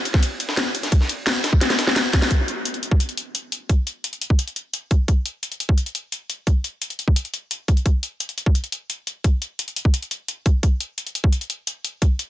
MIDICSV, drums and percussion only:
0, 0, Header, 1, 2, 480
1, 0, Start_track
1, 0, Tempo, 346821
1, 1273, Time_signature, 4, 2, 24, 8
1, 17018, End_track
2, 0, Start_track
2, 0, Title_t, "Drums"
2, 73, Note_on_c, 9, 42, 67
2, 74, Note_on_c, 9, 51, 69
2, 194, Note_off_c, 9, 51, 0
2, 194, Note_on_c, 9, 36, 100
2, 194, Note_on_c, 9, 38, 34
2, 194, Note_on_c, 9, 51, 43
2, 212, Note_off_c, 9, 42, 0
2, 313, Note_on_c, 9, 42, 92
2, 314, Note_off_c, 9, 51, 0
2, 314, Note_on_c, 9, 51, 86
2, 332, Note_off_c, 9, 36, 0
2, 332, Note_off_c, 9, 38, 0
2, 452, Note_off_c, 9, 42, 0
2, 452, Note_off_c, 9, 51, 0
2, 553, Note_on_c, 9, 42, 65
2, 554, Note_on_c, 9, 51, 66
2, 674, Note_on_c, 9, 38, 55
2, 691, Note_off_c, 9, 42, 0
2, 692, Note_off_c, 9, 51, 0
2, 793, Note_off_c, 9, 38, 0
2, 793, Note_on_c, 9, 38, 115
2, 793, Note_on_c, 9, 42, 95
2, 794, Note_off_c, 9, 38, 0
2, 794, Note_on_c, 9, 38, 111
2, 794, Note_on_c, 9, 51, 84
2, 932, Note_off_c, 9, 38, 0
2, 932, Note_off_c, 9, 42, 0
2, 932, Note_off_c, 9, 51, 0
2, 1033, Note_on_c, 9, 42, 68
2, 1033, Note_on_c, 9, 51, 72
2, 1153, Note_on_c, 9, 38, 42
2, 1154, Note_off_c, 9, 42, 0
2, 1154, Note_on_c, 9, 42, 37
2, 1172, Note_off_c, 9, 51, 0
2, 1273, Note_on_c, 9, 36, 121
2, 1273, Note_on_c, 9, 51, 93
2, 1274, Note_off_c, 9, 42, 0
2, 1274, Note_on_c, 9, 42, 95
2, 1292, Note_off_c, 9, 38, 0
2, 1393, Note_on_c, 9, 38, 39
2, 1412, Note_off_c, 9, 36, 0
2, 1412, Note_off_c, 9, 42, 0
2, 1412, Note_off_c, 9, 51, 0
2, 1513, Note_on_c, 9, 51, 67
2, 1514, Note_on_c, 9, 42, 69
2, 1531, Note_off_c, 9, 38, 0
2, 1652, Note_off_c, 9, 51, 0
2, 1653, Note_off_c, 9, 42, 0
2, 1753, Note_on_c, 9, 38, 115
2, 1753, Note_on_c, 9, 51, 89
2, 1754, Note_off_c, 9, 38, 0
2, 1754, Note_on_c, 9, 38, 119
2, 1754, Note_on_c, 9, 42, 98
2, 1873, Note_off_c, 9, 51, 0
2, 1873, Note_on_c, 9, 51, 43
2, 1874, Note_off_c, 9, 42, 0
2, 1874, Note_on_c, 9, 42, 38
2, 1892, Note_off_c, 9, 38, 0
2, 1993, Note_off_c, 9, 51, 0
2, 1993, Note_on_c, 9, 38, 103
2, 1993, Note_on_c, 9, 51, 81
2, 1994, Note_off_c, 9, 42, 0
2, 1994, Note_on_c, 9, 42, 68
2, 2113, Note_on_c, 9, 36, 61
2, 2131, Note_off_c, 9, 38, 0
2, 2131, Note_off_c, 9, 51, 0
2, 2132, Note_off_c, 9, 42, 0
2, 2233, Note_on_c, 9, 51, 86
2, 2234, Note_on_c, 9, 38, 61
2, 2234, Note_on_c, 9, 42, 98
2, 2252, Note_off_c, 9, 36, 0
2, 2353, Note_off_c, 9, 38, 0
2, 2353, Note_on_c, 9, 38, 52
2, 2354, Note_off_c, 9, 38, 0
2, 2354, Note_off_c, 9, 42, 0
2, 2354, Note_on_c, 9, 38, 56
2, 2354, Note_on_c, 9, 42, 38
2, 2372, Note_off_c, 9, 51, 0
2, 2473, Note_off_c, 9, 38, 0
2, 2473, Note_on_c, 9, 38, 103
2, 2473, Note_on_c, 9, 51, 78
2, 2474, Note_off_c, 9, 42, 0
2, 2474, Note_on_c, 9, 42, 67
2, 2594, Note_off_c, 9, 38, 0
2, 2594, Note_on_c, 9, 38, 69
2, 2611, Note_off_c, 9, 51, 0
2, 2613, Note_off_c, 9, 42, 0
2, 2713, Note_off_c, 9, 38, 0
2, 2713, Note_on_c, 9, 38, 42
2, 2713, Note_on_c, 9, 51, 61
2, 2714, Note_off_c, 9, 38, 0
2, 2714, Note_on_c, 9, 38, 88
2, 2714, Note_on_c, 9, 42, 101
2, 2833, Note_off_c, 9, 51, 0
2, 2833, Note_on_c, 9, 51, 39
2, 2853, Note_off_c, 9, 38, 0
2, 2853, Note_off_c, 9, 42, 0
2, 2953, Note_off_c, 9, 51, 0
2, 2953, Note_on_c, 9, 36, 101
2, 2953, Note_on_c, 9, 51, 81
2, 2955, Note_on_c, 9, 38, 101
2, 2955, Note_on_c, 9, 42, 68
2, 3074, Note_off_c, 9, 38, 0
2, 3074, Note_off_c, 9, 42, 0
2, 3074, Note_on_c, 9, 38, 86
2, 3074, Note_on_c, 9, 42, 39
2, 3091, Note_off_c, 9, 51, 0
2, 3092, Note_off_c, 9, 36, 0
2, 3193, Note_on_c, 9, 36, 114
2, 3194, Note_off_c, 9, 42, 0
2, 3194, Note_on_c, 9, 42, 90
2, 3213, Note_off_c, 9, 38, 0
2, 3332, Note_off_c, 9, 36, 0
2, 3332, Note_off_c, 9, 42, 0
2, 3434, Note_on_c, 9, 42, 63
2, 3572, Note_off_c, 9, 42, 0
2, 3674, Note_on_c, 9, 42, 94
2, 3794, Note_off_c, 9, 42, 0
2, 3794, Note_on_c, 9, 42, 36
2, 3914, Note_off_c, 9, 42, 0
2, 3914, Note_on_c, 9, 42, 66
2, 4033, Note_on_c, 9, 36, 101
2, 4052, Note_off_c, 9, 42, 0
2, 4154, Note_on_c, 9, 42, 91
2, 4172, Note_off_c, 9, 36, 0
2, 4274, Note_off_c, 9, 42, 0
2, 4274, Note_on_c, 9, 42, 35
2, 4394, Note_off_c, 9, 42, 0
2, 4394, Note_on_c, 9, 42, 65
2, 4532, Note_off_c, 9, 42, 0
2, 4633, Note_on_c, 9, 42, 93
2, 4772, Note_off_c, 9, 42, 0
2, 4874, Note_on_c, 9, 42, 67
2, 5012, Note_off_c, 9, 42, 0
2, 5113, Note_on_c, 9, 36, 118
2, 5113, Note_on_c, 9, 42, 88
2, 5252, Note_off_c, 9, 36, 0
2, 5252, Note_off_c, 9, 42, 0
2, 5353, Note_on_c, 9, 42, 62
2, 5492, Note_off_c, 9, 42, 0
2, 5594, Note_on_c, 9, 42, 92
2, 5714, Note_off_c, 9, 42, 0
2, 5714, Note_on_c, 9, 42, 35
2, 5834, Note_on_c, 9, 46, 72
2, 5852, Note_off_c, 9, 42, 0
2, 5954, Note_on_c, 9, 36, 62
2, 5972, Note_off_c, 9, 46, 0
2, 6074, Note_on_c, 9, 42, 89
2, 6092, Note_off_c, 9, 36, 0
2, 6194, Note_off_c, 9, 42, 0
2, 6194, Note_on_c, 9, 42, 35
2, 6313, Note_off_c, 9, 42, 0
2, 6313, Note_on_c, 9, 42, 62
2, 6452, Note_off_c, 9, 42, 0
2, 6554, Note_on_c, 9, 42, 90
2, 6692, Note_off_c, 9, 42, 0
2, 6793, Note_on_c, 9, 42, 64
2, 6794, Note_on_c, 9, 36, 101
2, 6932, Note_off_c, 9, 36, 0
2, 6932, Note_off_c, 9, 42, 0
2, 7034, Note_on_c, 9, 36, 123
2, 7034, Note_on_c, 9, 42, 85
2, 7172, Note_off_c, 9, 36, 0
2, 7172, Note_off_c, 9, 42, 0
2, 7273, Note_on_c, 9, 42, 58
2, 7412, Note_off_c, 9, 42, 0
2, 7513, Note_on_c, 9, 42, 89
2, 7634, Note_off_c, 9, 42, 0
2, 7634, Note_on_c, 9, 42, 35
2, 7753, Note_off_c, 9, 42, 0
2, 7753, Note_on_c, 9, 42, 61
2, 7874, Note_on_c, 9, 36, 108
2, 7892, Note_off_c, 9, 42, 0
2, 7994, Note_on_c, 9, 42, 85
2, 8012, Note_off_c, 9, 36, 0
2, 8114, Note_off_c, 9, 42, 0
2, 8114, Note_on_c, 9, 42, 34
2, 8234, Note_off_c, 9, 42, 0
2, 8234, Note_on_c, 9, 42, 60
2, 8372, Note_off_c, 9, 42, 0
2, 8474, Note_on_c, 9, 42, 88
2, 8612, Note_off_c, 9, 42, 0
2, 8714, Note_on_c, 9, 42, 61
2, 8852, Note_off_c, 9, 42, 0
2, 8953, Note_on_c, 9, 36, 123
2, 8953, Note_on_c, 9, 42, 82
2, 9092, Note_off_c, 9, 36, 0
2, 9092, Note_off_c, 9, 42, 0
2, 9193, Note_on_c, 9, 42, 59
2, 9332, Note_off_c, 9, 42, 0
2, 9433, Note_on_c, 9, 42, 87
2, 9553, Note_off_c, 9, 42, 0
2, 9553, Note_on_c, 9, 42, 33
2, 9673, Note_on_c, 9, 46, 75
2, 9692, Note_off_c, 9, 42, 0
2, 9793, Note_on_c, 9, 36, 63
2, 9812, Note_off_c, 9, 46, 0
2, 9913, Note_on_c, 9, 42, 84
2, 9932, Note_off_c, 9, 36, 0
2, 10033, Note_off_c, 9, 42, 0
2, 10033, Note_on_c, 9, 42, 32
2, 10153, Note_off_c, 9, 42, 0
2, 10153, Note_on_c, 9, 42, 58
2, 10291, Note_off_c, 9, 42, 0
2, 10393, Note_on_c, 9, 42, 88
2, 10531, Note_off_c, 9, 42, 0
2, 10633, Note_on_c, 9, 36, 98
2, 10633, Note_on_c, 9, 42, 60
2, 10753, Note_off_c, 9, 42, 0
2, 10753, Note_on_c, 9, 42, 34
2, 10772, Note_off_c, 9, 36, 0
2, 10873, Note_off_c, 9, 42, 0
2, 10873, Note_on_c, 9, 36, 117
2, 10873, Note_on_c, 9, 42, 82
2, 11011, Note_off_c, 9, 42, 0
2, 11012, Note_off_c, 9, 36, 0
2, 11113, Note_on_c, 9, 42, 59
2, 11251, Note_off_c, 9, 42, 0
2, 11353, Note_on_c, 9, 42, 88
2, 11473, Note_off_c, 9, 42, 0
2, 11473, Note_on_c, 9, 42, 33
2, 11594, Note_off_c, 9, 42, 0
2, 11594, Note_on_c, 9, 42, 61
2, 11713, Note_on_c, 9, 36, 103
2, 11732, Note_off_c, 9, 42, 0
2, 11834, Note_on_c, 9, 42, 84
2, 11852, Note_off_c, 9, 36, 0
2, 11954, Note_off_c, 9, 42, 0
2, 11954, Note_on_c, 9, 42, 33
2, 12074, Note_off_c, 9, 42, 0
2, 12074, Note_on_c, 9, 42, 61
2, 12212, Note_off_c, 9, 42, 0
2, 12314, Note_on_c, 9, 42, 88
2, 12452, Note_off_c, 9, 42, 0
2, 12554, Note_on_c, 9, 42, 61
2, 12692, Note_off_c, 9, 42, 0
2, 12793, Note_on_c, 9, 36, 114
2, 12794, Note_on_c, 9, 42, 85
2, 12932, Note_off_c, 9, 36, 0
2, 12932, Note_off_c, 9, 42, 0
2, 13034, Note_on_c, 9, 42, 63
2, 13172, Note_off_c, 9, 42, 0
2, 13274, Note_on_c, 9, 42, 92
2, 13394, Note_off_c, 9, 42, 0
2, 13394, Note_on_c, 9, 42, 35
2, 13514, Note_on_c, 9, 46, 79
2, 13532, Note_off_c, 9, 42, 0
2, 13633, Note_on_c, 9, 36, 59
2, 13652, Note_off_c, 9, 46, 0
2, 13754, Note_on_c, 9, 42, 89
2, 13772, Note_off_c, 9, 36, 0
2, 13874, Note_off_c, 9, 42, 0
2, 13874, Note_on_c, 9, 42, 34
2, 13994, Note_off_c, 9, 42, 0
2, 13994, Note_on_c, 9, 42, 63
2, 14132, Note_off_c, 9, 42, 0
2, 14234, Note_on_c, 9, 42, 92
2, 14372, Note_off_c, 9, 42, 0
2, 14473, Note_on_c, 9, 36, 95
2, 14473, Note_on_c, 9, 42, 63
2, 14612, Note_off_c, 9, 36, 0
2, 14612, Note_off_c, 9, 42, 0
2, 14713, Note_on_c, 9, 36, 113
2, 14714, Note_on_c, 9, 42, 89
2, 14852, Note_off_c, 9, 36, 0
2, 14852, Note_off_c, 9, 42, 0
2, 14954, Note_on_c, 9, 42, 65
2, 15093, Note_off_c, 9, 42, 0
2, 15194, Note_on_c, 9, 42, 94
2, 15314, Note_off_c, 9, 42, 0
2, 15314, Note_on_c, 9, 42, 36
2, 15434, Note_off_c, 9, 42, 0
2, 15434, Note_on_c, 9, 42, 67
2, 15554, Note_on_c, 9, 36, 99
2, 15572, Note_off_c, 9, 42, 0
2, 15674, Note_on_c, 9, 42, 90
2, 15692, Note_off_c, 9, 36, 0
2, 15794, Note_off_c, 9, 42, 0
2, 15794, Note_on_c, 9, 42, 35
2, 15914, Note_off_c, 9, 42, 0
2, 15914, Note_on_c, 9, 42, 64
2, 16052, Note_off_c, 9, 42, 0
2, 16154, Note_on_c, 9, 42, 93
2, 16292, Note_off_c, 9, 42, 0
2, 16394, Note_on_c, 9, 42, 64
2, 16532, Note_off_c, 9, 42, 0
2, 16634, Note_on_c, 9, 36, 115
2, 16634, Note_on_c, 9, 42, 94
2, 16772, Note_off_c, 9, 36, 0
2, 16772, Note_off_c, 9, 42, 0
2, 16874, Note_on_c, 9, 42, 65
2, 17012, Note_off_c, 9, 42, 0
2, 17018, End_track
0, 0, End_of_file